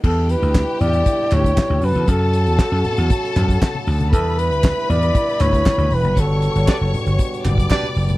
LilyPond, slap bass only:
\new Staff \with { instrumentName = "Slap bass" } { \clef bass \time 4/4 \key e \dorian \tempo 4 = 117 e,8. d,8 r16 e,8 r8 d,8 r16 d,16 fis,16 e,16 | fis,8. e,16 r16 fis,16 r16 e,16 r8 fis,8 r8 d,8 | e,8. d,8 r16 e,8 r8 d,8 r16 d,16 e,,16 fis,,16 | g,,8. g,,16 r16 fis,,16 r16 g,,16 r8 fis,,8 r8 fis,,8 | }